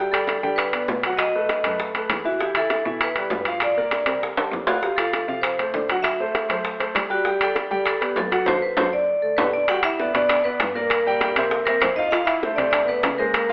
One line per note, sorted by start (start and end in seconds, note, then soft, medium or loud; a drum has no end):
0.00 0.38 G2 medium
0.00 0.11 G3 medium
0.00 0.11 G4 medium
0.00 0.11 G5 medium
0.12 0.38 G3 medium
0.12 0.38 G4 medium
0.12 0.55 A4 medium
0.12 0.38 G5 medium
0.12 high timbale medium
0.27 high bongo medium
0.27 high timbale medium
0.43 0.86 D3 medium
0.43 0.68 G3 medium
0.43 0.68 G4 medium
0.43 0.68 G5 medium
0.43 high bongo soft
0.56 1.00 B4 medium
0.56 high bongo medium
0.56 high timbale medium
0.73 0.98 B3 medium
0.73 0.99 B4 medium
0.73 0.99 D5 medium
0.73 high bongo soft
0.73 high timbale medium
0.88 1.59 B2 medium
0.88 high bongo soft
0.88 low bongo medium
0.88 low timbale medium
1.03 1.30 F#3 medium
1.03 1.30 F#4 medium
1.03 1.30 F#5 medium
1.03 high bongo soft
1.03 high timbale medium
1.17 1.75 D#5 medium
1.17 high bongo medium
1.17 high timbale medium
1.35 1.60 A3 medium
1.35 1.60 A4 medium
1.35 1.60 B4 medium
1.49 high bongo medium
1.49 high timbale medium
1.64 2.07 F#2 medium
1.64 1.90 A3 medium
1.64 1.90 A4 medium
1.64 1.90 B4 medium
1.64 high bongo soft
1.64 high timbale medium
1.80 high bongo medium
1.95 2.20 A3 medium
1.95 2.21 A4 medium
1.95 2.21 B4 medium
1.95 high bongo soft
1.95 high timbale medium
2.10 2.80 E2 medium
2.10 high bongo soft
2.10 low bongo medium
2.10 high timbale medium
2.25 2.37 E3 medium
2.25 2.38 E4 medium
2.25 2.40 F#4 medium
2.25 2.38 E5 medium
2.25 high bongo soft
2.40 2.53 E3 medium
2.40 2.53 E4 medium
2.40 2.56 G4 medium
2.40 2.54 E5 medium
2.40 high bongo medium
2.55 2.81 E3 medium
2.55 2.81 E4 medium
2.55 3.03 A4 medium
2.55 2.81 E5 medium
2.55 high timbale medium
2.70 high bongo medium
2.70 high timbale medium
2.85 3.28 B2 medium
2.85 3.11 E3 medium
2.85 3.11 E4 medium
2.85 3.11 E5 medium
2.85 high bongo soft
3.01 3.44 B4 medium
3.01 high bongo medium
3.01 high timbale medium
3.15 3.42 G3 medium
3.15 3.42 G4 medium
3.15 3.42 B4 medium
3.15 high bongo soft
3.15 high timbale medium
3.30 4.01 G2 medium
3.30 high bongo soft
3.30 low bongo medium
3.30 low timbale medium
3.45 3.72 F3 medium
3.45 3.72 F4 medium
3.45 3.72 F5 medium
3.45 high bongo soft
3.45 high timbale medium
3.60 4.19 D5 loud
3.60 high bongo medium
3.60 high timbale medium
3.77 4.02 A#3 medium
3.77 4.02 A#4 medium
3.77 4.02 D5 medium
3.91 high bongo medium
3.91 high timbale medium
4.06 4.49 C3 medium
4.06 4.32 G3 medium
4.06 4.32 G4 medium
4.06 4.32 A#4 medium
4.06 high bongo soft
4.06 high timbale medium
4.23 high bongo medium
4.37 4.63 G3 medium
4.37 4.63 G4 medium
4.37 4.63 A#4 medium
4.37 high bongo soft
4.37 high timbale medium
4.52 5.23 F2 medium
4.52 high bongo soft
4.52 low bongo medium
4.67 4.81 F3 medium
4.67 4.81 F4 medium
4.67 4.83 F#4 medium
4.67 4.81 F5 medium
4.67 high bongo soft
4.67 low timbale loud
4.83 4.96 F3 medium
4.83 4.96 F4 medium
4.83 4.90 G4 medium
4.83 4.96 F5 medium
4.83 high bongo medium
4.96 5.23 F3 medium
4.96 5.23 F4 medium
4.96 5.40 A4 medium
4.96 5.24 F5 medium
4.96 high timbale medium
5.13 high bongo medium
5.13 high timbale medium
5.28 5.71 C3 medium
5.28 5.53 F3 medium
5.28 5.54 F4 medium
5.28 5.54 F5 medium
5.28 high bongo soft
5.42 5.85 C5 medium
5.42 high bongo medium
5.42 high timbale medium
5.59 5.84 A3 medium
5.59 5.84 A4 medium
5.59 5.84 C5 medium
5.59 high bongo soft
5.59 high timbale medium
5.74 6.44 D3 medium
5.74 high bongo soft
5.74 low bongo medium
5.89 6.15 F#3 medium
5.89 6.15 F#4 medium
5.89 6.15 F#5 medium
5.89 high bongo soft
5.89 high timbale medium
6.03 6.60 E5 loud
6.03 high bongo medium
6.03 high timbale medium
6.20 6.45 A3 medium
6.20 6.45 A4 medium
6.20 6.45 C5 medium
6.35 high bongo medium
6.35 high timbale medium
6.49 6.92 F#3 medium
6.49 6.75 A3 medium
6.49 6.75 A4 medium
6.49 6.75 C5 medium
6.49 high bongo soft
6.49 high timbale medium
6.65 high bongo medium
6.80 7.05 A3 medium
6.80 7.05 A4 medium
6.80 7.05 C5 medium
6.80 high bongo soft
6.80 high timbale medium
6.95 7.66 G3 medium
6.95 high bongo soft
6.95 low bongo medium
6.95 high timbale loud
7.10 7.23 G3 medium
7.10 7.26 F#4 medium
7.10 7.23 G4 medium
7.10 7.23 G5 medium
7.10 high bongo soft
7.25 7.38 G3 medium
7.25 7.33 G4 medium
7.25 7.39 G4 medium
7.25 7.39 G5 medium
7.25 high bongo medium
7.41 7.66 G3 medium
7.41 7.66 G4 medium
7.41 7.85 A4 medium
7.41 7.66 G5 medium
7.41 high timbale medium
7.56 high bongo medium
7.56 high timbale medium
7.71 7.96 G3 medium
7.71 8.14 G3 medium
7.71 7.96 G4 medium
7.71 7.96 G5 medium
7.71 high bongo soft
7.86 8.00 A4 medium
7.86 high bongo medium
7.86 high timbale medium
8.01 8.26 B3 medium
8.01 8.17 G4 medium
8.01 8.26 B4 medium
8.01 8.26 D5 medium
8.01 high bongo soft
8.01 high timbale medium
8.16 8.45 F#3 medium
8.16 8.48 A4 medium
8.16 high bongo soft
8.16 low bongo medium
8.16 low timbale medium
8.31 8.44 F#3 medium
8.31 8.44 F#4 medium
8.31 8.44 F#5 medium
8.31 high bongo soft
8.31 high timbale medium
8.46 8.58 F#2 medium
8.46 8.57 F#4 medium
8.46 8.56 A4 medium
8.46 8.56 C5 medium
8.46 8.55 C5 loud
8.46 low bongo medium
8.46 high timbale medium
8.62 8.78 B4 medium
8.77 8.89 F#2 loud
8.77 8.87 F#4 loud
8.77 8.87 A4 medium
8.77 8.87 C5 medium
8.77 8.92 C5 medium
8.77 low bongo loud
8.77 high timbale loud
8.93 9.50 D5 loud
9.22 9.37 A3 medium
9.22 9.38 A4 medium
9.37 9.50 B2 medium
9.37 9.53 B3 medium
9.37 9.48 G4 medium
9.37 9.49 A4 medium
9.37 9.52 B4 medium
9.37 9.48 B4 medium
9.37 low bongo medium
9.37 high timbale loud
9.53 9.68 D4 medium
9.53 9.69 D5 medium
9.68 9.94 G3 medium
9.68 9.83 F#4 loud
9.68 9.95 G4 medium
9.68 9.85 F#5 loud
9.68 9.95 G5 medium
9.68 high bongo medium
9.68 high timbale medium
9.83 10.12 E4 medium
9.83 10.15 E5 loud
9.83 high timbale medium
10.00 10.12 B3 medium
10.00 10.12 B4 medium
10.00 10.13 D5 medium
10.00 high bongo medium
10.14 10.57 B2 medium
10.14 10.39 B3 medium
10.14 10.28 D4 medium
10.14 10.39 B4 medium
10.14 10.28 D5 loud
10.14 10.40 D5 medium
10.14 high timbale medium
10.29 10.43 D4 medium
10.29 10.45 D5 loud
10.29 high bongo medium
10.29 high timbale loud
10.44 10.73 B3 medium
10.44 10.70 B3 medium
10.44 10.73 B4 medium
10.44 10.70 B4 medium
10.44 10.70 D5 medium
10.60 11.31 G2 medium
10.60 high bongo medium
10.60 low bongo medium
10.60 high timbale medium
10.75 11.62 A#3 medium
10.75 11.00 A#3 medium
10.75 11.00 A#4 medium
10.75 11.64 A#4 loud
10.75 11.01 D5 medium
10.90 high bongo medium
10.90 high timbale medium
11.06 11.19 G3 medium
11.06 11.19 G4 medium
11.06 11.19 G5 medium
11.21 11.34 G3 medium
11.21 11.34 G4 medium
11.21 11.34 G5 medium
11.21 high bongo medium
11.21 high timbale medium
11.36 11.79 C3 medium
11.36 11.62 C4 medium
11.36 11.62 C5 medium
11.36 11.62 E5 medium
11.36 high bongo soft
11.36 high timbale medium
11.51 high bongo medium
11.65 11.80 A#3 medium
11.65 11.92 C4 medium
11.65 11.82 A#4 medium
11.65 11.92 C5 medium
11.65 11.93 E5 medium
11.65 high bongo soft
11.65 high timbale medium
11.81 12.53 F2 medium
11.81 11.96 C4 medium
11.81 11.97 C5 medium
11.81 high bongo medium
11.81 low bongo medium
11.81 high timbale loud
11.96 12.10 F3 medium
11.96 12.10 D#4 medium
11.96 12.10 F4 medium
11.96 12.12 D#5 loud
11.96 12.11 F5 medium
11.96 high bongo soft
12.11 12.37 F3 medium
12.11 12.24 F4 medium
12.11 12.38 F4 medium
12.11 12.27 F5 loud
12.11 12.38 F5 medium
12.11 high bongo medium
12.11 high timbale medium
12.25 12.54 E4 loud
12.25 12.58 E5 loud
12.25 high timbale medium
12.43 12.56 A3 medium
12.43 12.56 A4 medium
12.43 12.56 C5 medium
12.43 high bongo medium
12.55 13.00 C3 medium
12.55 12.83 A3 medium
12.55 12.62 D4 medium
12.55 12.83 A4 medium
12.55 12.83 C5 medium
12.55 12.63 D5 medium
12.55 high timbale medium
12.70 12.84 D4 medium
12.70 12.88 D5 medium
12.70 high bongo medium
12.70 high timbale medium
12.85 13.13 A3 medium
12.85 13.15 B3 medium
12.85 13.20 B4 medium
12.85 13.14 D5 medium
12.89 13.14 A4 medium
13.03 13.53 C#3 medium
13.03 high bongo medium
13.03 low bongo medium
13.03 high timbale medium
13.16 13.44 G#3 medium
13.16 13.53 A#3 medium
13.16 13.44 G#4 medium
13.16 13.53 A#4 medium
13.16 13.44 C5 medium
13.34 high bongo medium
13.34 high timbale medium
13.49 13.53 F3 loud
13.49 13.53 F4 medium